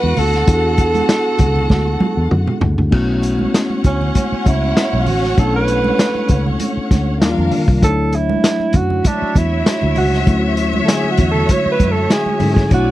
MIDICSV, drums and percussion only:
0, 0, Header, 1, 2, 480
1, 0, Start_track
1, 0, Key_signature, 2, "minor"
1, 0, Tempo, 611621
1, 378, Time_signature, 4, 2, 24, 8
1, 10132, End_track
2, 0, Start_track
2, 0, Title_t, "Drums"
2, 25, Note_on_c, 9, 63, 57
2, 103, Note_off_c, 9, 63, 0
2, 131, Note_on_c, 9, 62, 31
2, 131, Note_on_c, 9, 64, 76
2, 133, Note_on_c, 9, 46, 74
2, 209, Note_off_c, 9, 62, 0
2, 209, Note_off_c, 9, 64, 0
2, 211, Note_off_c, 9, 46, 0
2, 264, Note_on_c, 9, 42, 49
2, 270, Note_on_c, 9, 38, 34
2, 343, Note_off_c, 9, 42, 0
2, 349, Note_off_c, 9, 38, 0
2, 372, Note_on_c, 9, 42, 88
2, 374, Note_on_c, 9, 36, 116
2, 450, Note_off_c, 9, 42, 0
2, 453, Note_off_c, 9, 36, 0
2, 610, Note_on_c, 9, 42, 62
2, 614, Note_on_c, 9, 36, 88
2, 688, Note_off_c, 9, 42, 0
2, 692, Note_off_c, 9, 36, 0
2, 742, Note_on_c, 9, 63, 75
2, 745, Note_on_c, 9, 42, 49
2, 821, Note_off_c, 9, 63, 0
2, 824, Note_off_c, 9, 42, 0
2, 852, Note_on_c, 9, 62, 33
2, 854, Note_on_c, 9, 38, 113
2, 855, Note_on_c, 9, 42, 91
2, 930, Note_off_c, 9, 62, 0
2, 932, Note_off_c, 9, 38, 0
2, 933, Note_off_c, 9, 42, 0
2, 1087, Note_on_c, 9, 42, 72
2, 1094, Note_on_c, 9, 36, 88
2, 1096, Note_on_c, 9, 64, 80
2, 1165, Note_off_c, 9, 42, 0
2, 1172, Note_off_c, 9, 36, 0
2, 1174, Note_off_c, 9, 64, 0
2, 1222, Note_on_c, 9, 64, 59
2, 1300, Note_off_c, 9, 64, 0
2, 1331, Note_on_c, 9, 63, 71
2, 1335, Note_on_c, 9, 36, 88
2, 1338, Note_on_c, 9, 38, 53
2, 1409, Note_off_c, 9, 63, 0
2, 1413, Note_off_c, 9, 36, 0
2, 1416, Note_off_c, 9, 38, 0
2, 1572, Note_on_c, 9, 48, 64
2, 1573, Note_on_c, 9, 62, 31
2, 1573, Note_on_c, 9, 63, 66
2, 1650, Note_off_c, 9, 48, 0
2, 1652, Note_off_c, 9, 62, 0
2, 1652, Note_off_c, 9, 63, 0
2, 1814, Note_on_c, 9, 47, 79
2, 1892, Note_off_c, 9, 47, 0
2, 1942, Note_on_c, 9, 45, 69
2, 1942, Note_on_c, 9, 63, 60
2, 2020, Note_off_c, 9, 45, 0
2, 2020, Note_off_c, 9, 63, 0
2, 2048, Note_on_c, 9, 64, 74
2, 2051, Note_on_c, 9, 43, 108
2, 2126, Note_off_c, 9, 64, 0
2, 2130, Note_off_c, 9, 43, 0
2, 2182, Note_on_c, 9, 43, 82
2, 2261, Note_off_c, 9, 43, 0
2, 2292, Note_on_c, 9, 49, 81
2, 2296, Note_on_c, 9, 36, 98
2, 2371, Note_off_c, 9, 49, 0
2, 2374, Note_off_c, 9, 36, 0
2, 2530, Note_on_c, 9, 62, 32
2, 2536, Note_on_c, 9, 42, 68
2, 2608, Note_off_c, 9, 62, 0
2, 2614, Note_off_c, 9, 42, 0
2, 2661, Note_on_c, 9, 63, 74
2, 2740, Note_off_c, 9, 63, 0
2, 2781, Note_on_c, 9, 38, 106
2, 2781, Note_on_c, 9, 42, 87
2, 2859, Note_off_c, 9, 38, 0
2, 2860, Note_off_c, 9, 42, 0
2, 2904, Note_on_c, 9, 63, 45
2, 2983, Note_off_c, 9, 63, 0
2, 3014, Note_on_c, 9, 42, 63
2, 3018, Note_on_c, 9, 36, 81
2, 3018, Note_on_c, 9, 64, 68
2, 3092, Note_off_c, 9, 42, 0
2, 3096, Note_off_c, 9, 36, 0
2, 3096, Note_off_c, 9, 64, 0
2, 3149, Note_on_c, 9, 64, 56
2, 3227, Note_off_c, 9, 64, 0
2, 3257, Note_on_c, 9, 42, 90
2, 3259, Note_on_c, 9, 62, 27
2, 3259, Note_on_c, 9, 63, 63
2, 3260, Note_on_c, 9, 36, 81
2, 3336, Note_off_c, 9, 42, 0
2, 3337, Note_off_c, 9, 62, 0
2, 3337, Note_off_c, 9, 63, 0
2, 3339, Note_off_c, 9, 36, 0
2, 3497, Note_on_c, 9, 62, 26
2, 3497, Note_on_c, 9, 63, 54
2, 3501, Note_on_c, 9, 36, 80
2, 3502, Note_on_c, 9, 42, 53
2, 3576, Note_off_c, 9, 62, 0
2, 3576, Note_off_c, 9, 63, 0
2, 3580, Note_off_c, 9, 36, 0
2, 3581, Note_off_c, 9, 42, 0
2, 3741, Note_on_c, 9, 38, 118
2, 3741, Note_on_c, 9, 42, 82
2, 3819, Note_off_c, 9, 38, 0
2, 3820, Note_off_c, 9, 42, 0
2, 3870, Note_on_c, 9, 63, 51
2, 3948, Note_off_c, 9, 63, 0
2, 3974, Note_on_c, 9, 64, 71
2, 3975, Note_on_c, 9, 46, 75
2, 4053, Note_off_c, 9, 46, 0
2, 4053, Note_off_c, 9, 64, 0
2, 4111, Note_on_c, 9, 38, 32
2, 4190, Note_off_c, 9, 38, 0
2, 4217, Note_on_c, 9, 62, 31
2, 4220, Note_on_c, 9, 36, 112
2, 4221, Note_on_c, 9, 42, 78
2, 4295, Note_off_c, 9, 62, 0
2, 4299, Note_off_c, 9, 36, 0
2, 4299, Note_off_c, 9, 42, 0
2, 4456, Note_on_c, 9, 42, 66
2, 4460, Note_on_c, 9, 62, 32
2, 4535, Note_off_c, 9, 42, 0
2, 4539, Note_off_c, 9, 62, 0
2, 4586, Note_on_c, 9, 63, 77
2, 4664, Note_off_c, 9, 63, 0
2, 4696, Note_on_c, 9, 62, 30
2, 4703, Note_on_c, 9, 38, 108
2, 4703, Note_on_c, 9, 42, 90
2, 4774, Note_off_c, 9, 62, 0
2, 4781, Note_off_c, 9, 38, 0
2, 4782, Note_off_c, 9, 42, 0
2, 4828, Note_on_c, 9, 63, 46
2, 4906, Note_off_c, 9, 63, 0
2, 4933, Note_on_c, 9, 42, 68
2, 4940, Note_on_c, 9, 36, 84
2, 4943, Note_on_c, 9, 62, 33
2, 4943, Note_on_c, 9, 64, 72
2, 5011, Note_off_c, 9, 42, 0
2, 5018, Note_off_c, 9, 36, 0
2, 5022, Note_off_c, 9, 62, 0
2, 5022, Note_off_c, 9, 64, 0
2, 5073, Note_on_c, 9, 64, 68
2, 5152, Note_off_c, 9, 64, 0
2, 5177, Note_on_c, 9, 42, 79
2, 5180, Note_on_c, 9, 62, 27
2, 5180, Note_on_c, 9, 63, 67
2, 5255, Note_off_c, 9, 42, 0
2, 5258, Note_off_c, 9, 62, 0
2, 5258, Note_off_c, 9, 63, 0
2, 5422, Note_on_c, 9, 36, 81
2, 5423, Note_on_c, 9, 63, 64
2, 5424, Note_on_c, 9, 42, 60
2, 5430, Note_on_c, 9, 38, 26
2, 5501, Note_off_c, 9, 36, 0
2, 5501, Note_off_c, 9, 63, 0
2, 5502, Note_off_c, 9, 42, 0
2, 5508, Note_off_c, 9, 38, 0
2, 5663, Note_on_c, 9, 38, 107
2, 5663, Note_on_c, 9, 42, 79
2, 5669, Note_on_c, 9, 62, 32
2, 5741, Note_off_c, 9, 38, 0
2, 5742, Note_off_c, 9, 42, 0
2, 5747, Note_off_c, 9, 62, 0
2, 5791, Note_on_c, 9, 63, 56
2, 5870, Note_off_c, 9, 63, 0
2, 5897, Note_on_c, 9, 46, 76
2, 5899, Note_on_c, 9, 62, 33
2, 5899, Note_on_c, 9, 64, 77
2, 5976, Note_off_c, 9, 46, 0
2, 5977, Note_off_c, 9, 62, 0
2, 5977, Note_off_c, 9, 64, 0
2, 6026, Note_on_c, 9, 36, 86
2, 6105, Note_off_c, 9, 36, 0
2, 6139, Note_on_c, 9, 62, 28
2, 6141, Note_on_c, 9, 36, 114
2, 6143, Note_on_c, 9, 42, 86
2, 6217, Note_off_c, 9, 62, 0
2, 6220, Note_off_c, 9, 36, 0
2, 6221, Note_off_c, 9, 42, 0
2, 6377, Note_on_c, 9, 42, 65
2, 6382, Note_on_c, 9, 62, 30
2, 6456, Note_off_c, 9, 42, 0
2, 6461, Note_off_c, 9, 62, 0
2, 6510, Note_on_c, 9, 63, 82
2, 6588, Note_off_c, 9, 63, 0
2, 6620, Note_on_c, 9, 62, 30
2, 6622, Note_on_c, 9, 38, 116
2, 6623, Note_on_c, 9, 42, 104
2, 6699, Note_off_c, 9, 62, 0
2, 6701, Note_off_c, 9, 38, 0
2, 6701, Note_off_c, 9, 42, 0
2, 6749, Note_on_c, 9, 63, 45
2, 6827, Note_off_c, 9, 63, 0
2, 6849, Note_on_c, 9, 42, 73
2, 6859, Note_on_c, 9, 36, 87
2, 6863, Note_on_c, 9, 62, 33
2, 6863, Note_on_c, 9, 64, 80
2, 6928, Note_off_c, 9, 42, 0
2, 6937, Note_off_c, 9, 36, 0
2, 6941, Note_off_c, 9, 62, 0
2, 6941, Note_off_c, 9, 64, 0
2, 6987, Note_on_c, 9, 64, 65
2, 7065, Note_off_c, 9, 64, 0
2, 7096, Note_on_c, 9, 63, 62
2, 7098, Note_on_c, 9, 42, 88
2, 7101, Note_on_c, 9, 36, 90
2, 7175, Note_off_c, 9, 63, 0
2, 7177, Note_off_c, 9, 42, 0
2, 7180, Note_off_c, 9, 36, 0
2, 7337, Note_on_c, 9, 62, 27
2, 7337, Note_on_c, 9, 63, 60
2, 7342, Note_on_c, 9, 36, 84
2, 7344, Note_on_c, 9, 42, 61
2, 7416, Note_off_c, 9, 62, 0
2, 7416, Note_off_c, 9, 63, 0
2, 7420, Note_off_c, 9, 36, 0
2, 7423, Note_off_c, 9, 42, 0
2, 7581, Note_on_c, 9, 62, 30
2, 7583, Note_on_c, 9, 38, 126
2, 7583, Note_on_c, 9, 42, 87
2, 7660, Note_off_c, 9, 62, 0
2, 7661, Note_off_c, 9, 38, 0
2, 7662, Note_off_c, 9, 42, 0
2, 7705, Note_on_c, 9, 63, 60
2, 7784, Note_off_c, 9, 63, 0
2, 7814, Note_on_c, 9, 62, 35
2, 7814, Note_on_c, 9, 64, 65
2, 7816, Note_on_c, 9, 46, 73
2, 7892, Note_off_c, 9, 62, 0
2, 7892, Note_off_c, 9, 64, 0
2, 7894, Note_off_c, 9, 46, 0
2, 7953, Note_on_c, 9, 38, 31
2, 8032, Note_off_c, 9, 38, 0
2, 8050, Note_on_c, 9, 62, 31
2, 8059, Note_on_c, 9, 36, 100
2, 8059, Note_on_c, 9, 42, 81
2, 8128, Note_off_c, 9, 62, 0
2, 8138, Note_off_c, 9, 36, 0
2, 8138, Note_off_c, 9, 42, 0
2, 8295, Note_on_c, 9, 42, 68
2, 8374, Note_off_c, 9, 42, 0
2, 8424, Note_on_c, 9, 63, 73
2, 8502, Note_off_c, 9, 63, 0
2, 8541, Note_on_c, 9, 38, 98
2, 8542, Note_on_c, 9, 42, 100
2, 8620, Note_off_c, 9, 38, 0
2, 8621, Note_off_c, 9, 42, 0
2, 8665, Note_on_c, 9, 63, 42
2, 8744, Note_off_c, 9, 63, 0
2, 8770, Note_on_c, 9, 42, 76
2, 8778, Note_on_c, 9, 36, 83
2, 8779, Note_on_c, 9, 62, 34
2, 8779, Note_on_c, 9, 64, 75
2, 8848, Note_off_c, 9, 42, 0
2, 8856, Note_off_c, 9, 36, 0
2, 8858, Note_off_c, 9, 62, 0
2, 8858, Note_off_c, 9, 64, 0
2, 8908, Note_on_c, 9, 64, 58
2, 8986, Note_off_c, 9, 64, 0
2, 9016, Note_on_c, 9, 42, 91
2, 9017, Note_on_c, 9, 62, 30
2, 9017, Note_on_c, 9, 63, 59
2, 9019, Note_on_c, 9, 36, 89
2, 9095, Note_off_c, 9, 42, 0
2, 9096, Note_off_c, 9, 62, 0
2, 9096, Note_off_c, 9, 63, 0
2, 9097, Note_off_c, 9, 36, 0
2, 9255, Note_on_c, 9, 62, 29
2, 9255, Note_on_c, 9, 63, 65
2, 9259, Note_on_c, 9, 36, 81
2, 9260, Note_on_c, 9, 42, 58
2, 9334, Note_off_c, 9, 62, 0
2, 9334, Note_off_c, 9, 63, 0
2, 9337, Note_off_c, 9, 36, 0
2, 9338, Note_off_c, 9, 42, 0
2, 9498, Note_on_c, 9, 62, 33
2, 9499, Note_on_c, 9, 38, 112
2, 9499, Note_on_c, 9, 42, 84
2, 9576, Note_off_c, 9, 62, 0
2, 9577, Note_off_c, 9, 38, 0
2, 9578, Note_off_c, 9, 42, 0
2, 9624, Note_on_c, 9, 63, 59
2, 9702, Note_off_c, 9, 63, 0
2, 9730, Note_on_c, 9, 64, 75
2, 9732, Note_on_c, 9, 46, 73
2, 9808, Note_off_c, 9, 64, 0
2, 9811, Note_off_c, 9, 46, 0
2, 9861, Note_on_c, 9, 36, 90
2, 9867, Note_on_c, 9, 38, 32
2, 9939, Note_off_c, 9, 36, 0
2, 9945, Note_off_c, 9, 38, 0
2, 9970, Note_on_c, 9, 62, 29
2, 9975, Note_on_c, 9, 42, 78
2, 9976, Note_on_c, 9, 36, 107
2, 10048, Note_off_c, 9, 62, 0
2, 10053, Note_off_c, 9, 42, 0
2, 10054, Note_off_c, 9, 36, 0
2, 10132, End_track
0, 0, End_of_file